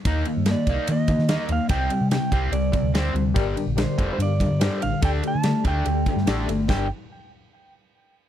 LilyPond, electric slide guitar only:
\new Staff \with { instrumentName = "Electric slide guitar" } { \time 4/4 \key g \minor \tempo 4 = 145 r4 d''4 ees''4. f''8 | g''4 g''4 d''4 c''8. r16 | r4 \tuplet 3/2 { c''4~ c''16 c''16 } d''4. f''8 | g''8 a''4 g''2 r8 |
g''8 r2. r8 | }